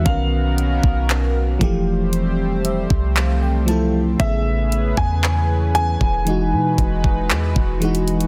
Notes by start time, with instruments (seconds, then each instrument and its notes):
Already playing: analog synth pad F#4
0.04 808-style bass B1, fm electric piano D#3 B3 C#4, analog synth pad D#3 B3 C#4 A#4, grand piano F5, kick, closed hi-hat
0.09 fm electric piano A#4
0.58 closed hi-hat
0.83 808-style bass B1, kick
1.09 clap, closed hi-hat
1.59 808-style bass E1, fm electric piano E3 F3 A3, analog synth pad G3 A3 C4 G4 C5, kick, closed hi-hat
1.64 fm electric piano G4
2.13 closed hi-hat
2.65 fm electric piano E5, closed hi-hat
2.90 808-style bass C2, kick
3.16 fm electric piano F5, clap, closed hi-hat
3.43 fm electric piano G5
3.66 fm electric piano F3 A3 E4 A5, closed hi-hat
3.71 fm electric piano A4
4.18 808-style bass A1, fm electric piano C#3 A3 B3, analog synth pad E3 C#4 G#4 B4, grand piano E5, kick, closed hi-hat
4.22 fm electric piano G#4
4.72 closed hi-hat
4.97 808-style bass E2, grand piano G#5, kick
5.23 clap, closed hi-hat
5.75 grand piano G#5, closed hi-hat
6.01 808-style bass E1, kick
6.25 fm electric piano E3 G#3 D#4, analog synth pad G#3 D#4 F#4 B4, closed hi-hat
6.30 fm electric piano F#4
6.53 808-style bass B2
6.78 808-style bass E1, kick, closed hi-hat
7.04 kick
7.30 808-style bass E2, clap, closed hi-hat
7.56 808-style bass E1, kick
7.80 fm electric piano E3 G#3 D#4, closed hi-hat
7.85 fm electric piano F#4
7.95 closed hi-hat
8.08 closed hi-hat
8.21 closed hi-hat